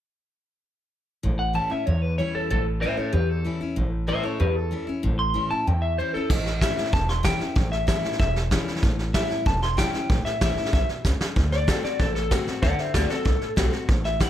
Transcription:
1.23 A1 A2
1.39 F#5
1.53 E3 G3 C#4 E4 A5
1.70 C#4 E4 E5, muted upright bass stroke
1.86 E2 C#5
2.02 B4
2.18 E3 G3 C#4 E4 C#5
2.34 A4, muted upright bass stroke
2.50 A1 A2 A4
2.81 E3 G3 C#4 E4 C5 E5
2.97 C#4 E4 A4 C#5, muted upright bass stroke
3.12 E2 G4 B4
3.29 A4
3.45 E3 G3 C#4 E4
3.61 C#4 E4, muted upright bass stroke
3.76 A1 A2
4.07 E3 G3 C#4 E4 C5 E5
4.23 C#4 E4 A4 C#5, muted upright bass stroke
4.40 E2 G4 B4
4.56 A4
4.71 E3 G3 C#4 E4
4.87 C#4 E4, muted upright bass stroke
5.03 A1 A2
5.19 C6
5.34 E3 G3 C#4 E4
5.50 C#4 E4 A5, muted upright bass stroke
5.67 E2 G5
5.82 E5
5.98 E3 G3 C#4 E4 C5
6.14 C#4 E4 A4, muted upright bass stroke
6.30 A1 A2, kick, snare, crash
6.46 snare
6.61 E3 G3 C#4 E4 E5, kick, snare, hi-hat pedal
6.77 C#4 E4, muted upright bass stroke, snare
6.85 snare
6.93 E1 E2 A5, kick, snare
7.09 C6, snare
7.23 E3 G3 C#4 E4 G5, kick, snare, hi-hat pedal
7.40 C#4 E4, muted upright bass stroke, snare
7.56 A1 A2, kick, snare
7.72 E5, snare
7.87 E3 G3 C#4 E4 E5, kick, snare, hi-hat pedal
8.03 C#4 E4, muted upright bass stroke, snare
8.12 snare
8.19 E1 E2 E5, kick, snare
8.36 snare
8.51 E3 G3 C#4 E4, kick, snare, hi-hat pedal
8.68 muted upright bass stroke, snare
8.76 snare
8.83 A1 A2, kick, snare
8.99 snare
9.14 E3 G3 C#4 E4 E5, kick, snare, hi-hat pedal
9.30 C#4 E4, muted upright bass stroke, snare
9.46 E1 E2 A5, kick, snare
9.62 C6, snare
9.77 E3 G3 C#4 E4 G5, kick, snare, hi-hat pedal
9.93 C#4 E4, muted upright bass stroke, snare
10.10 A1 A2, kick, snare
10.25 E5, muted upright bass stroke, snare
10.41 A1 E3 G3 C#4 E4 E5, kick, snare, hi-hat pedal
10.57 C#4 E4, muted upright bass stroke, snare
10.65 snare
10.73 B1 B2 E5, kick, snare
10.89 muted upright bass stroke, snare
11.05 C#2 C#3, kick, snare, hi-hat pedal
11.21 muted upright bass stroke, snare
11.36 D2 D3, kick, snare
11.52 D5, snare
11.67 D3 A3 C4 F#4 A4, kick, snare, hi-hat pedal
11.83 C4 F#4 D5, muted upright bass stroke, snare
12.00 A1 A2 A4, kick, snare
12.15 A4, snare
12.31 D3 A3 C4 F#4, kick, snare, hi-hat pedal
12.47 C4 F#4, muted upright bass stroke, snare
12.62 D2 D3 D5 F#5, kick, snare
12.78 C5 E5, muted upright bass stroke, snare
12.94 D2 D3 A3 C4 F#4 A4 D5, kick, snare, hi-hat pedal
13.10 C4 F#4 A4, snare
13.25 C2 A2, kick, snare
13.41 muted upright bass stroke, snare
13.56 B1 D3 A3 C4 F#4, kick, snare, hi-hat pedal
13.73 C4 F#4, snare
13.88 A1 A2, kick, snare
14.05 E5, snare
14.20 E3 G3 C#4 E4 F#5, kick, snare, hi-hat pedal

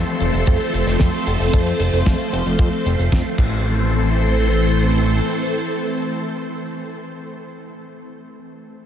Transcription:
Already playing: F3 A3 C4 A4 C5
0.06 closed hi-hat
0.20 F1, closed hi-hat
0.34 F1, closed hi-hat
0.46 F2, kick, closed hi-hat
0.60 closed hi-hat
0.74 F1, closed hi-hat
0.87 F1, snare, closed hi-hat
0.99 F2, kick, snare, closed hi-hat
1.14 closed hi-hat
1.27 F1, closed hi-hat
1.40 F1, closed hi-hat
1.53 F2, kick, closed hi-hat
1.67 closed hi-hat
1.80 F1, closed hi-hat
1.93 F1, closed hi-hat
2.06 F2, kick, snare, closed hi-hat
2.20 closed hi-hat
2.33 F1, closed hi-hat
2.46 F1, closed hi-hat
2.59 F2, kick, closed hi-hat
2.73 closed hi-hat
2.86 F1, closed hi-hat
2.99 F1, closed hi-hat
3.12 F2, kick, snare, closed hi-hat
3.26 closed hi-hat
3.38 A1 E3 A3 C4 A4 C5, kick, crash

